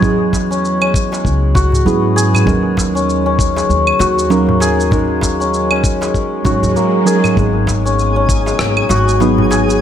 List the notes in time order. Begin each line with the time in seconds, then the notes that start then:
Already playing: E2 B3 C#4 E4 F#4 G#4
0.00 F#3 G#3 C#4 E4, kick, darbuka dum, shaker
0.04 G#4
0.33 kick, darbuka tek, shaker
0.51 C#4, shaker
0.65 shaker
0.81 C#4, claves
0.94 kick, shaker
1.12 G#3, darbuka ka, darbuka tek, shaker
1.25 C#2, kick, shaker
1.55 F#4, kick, darbuka tek, shaker
1.72 darbuka dum, shaker
1.85 G#2 F#3 B3 C#4 E4 G#4, shaker
2.16 G#4, shaker
2.34 darbuka ka, darbuka dum, claves, shaker
2.45 D#2 F#3 G#3 C#4 D#4 A#4, kick, darbuka dum, shaker
2.77 kick, darbuka tek, shaker
2.95 C#4, shaker
3.09 shaker
3.26 C#4
3.39 kick, shaker
3.56 G#3, darbuka ka, darbuka tek, shaker
3.69 D#2, shaker
3.87 claves
3.99 D#2 F#4, darbuka ka, darbuka tek, shaker
4.19 shaker
4.30 F#3 A#3 C#4 D#4 A#4, darbuka tek, shaker
4.49 darbuka dum
4.60 G#4, darbuka tek, shaker
4.79 darbuka ka, shaker
4.90 F#3 G#3 C#4 D#4 A#4, kick, darbuka dum, shaker
5.21 kick, darbuka tek, shaker
5.40 C#4, shaker
5.54 shaker
5.71 C#4, claves
5.84 kick, shaker
6.01 G#3, darbuka ka, darbuka tek, shaker
6.14 kick, swell, shaker
6.44 G#2 F#3 C#4 D#4 F#4 C#5, kick, darbuka tek, shaker
6.63 D#2, darbuka dum, shaker
6.76 A#3, shaker
7.05 F#3 C#4 D#4 G#4 A#4, shaker
7.24 darbuka ka, darbuka dum, claves, shaker
7.35 G#1 F#3 G#3 B3 D#4 G#4 G#5, kick, darbuka dum, shaker
7.39 G#4
7.67 kick, darbuka tek, shaker
7.85 C#4, shaker
7.99 shaker
8.16 C#4
8.29 kick, shaker
8.46 G#3, darbuka ka, darbuka tek, shaker
8.59 G#1, cross-stick, shaker
8.77 claves
8.89 G#1 F#4, darbuka ka, darbuka tek, shaker
9.08 shaker
9.20 F#3 B3 D#4 G#4, darbuka tek, shaker
9.38 darbuka dum
9.51 G#4, darbuka tek, shaker
9.69 darbuka ka, shaker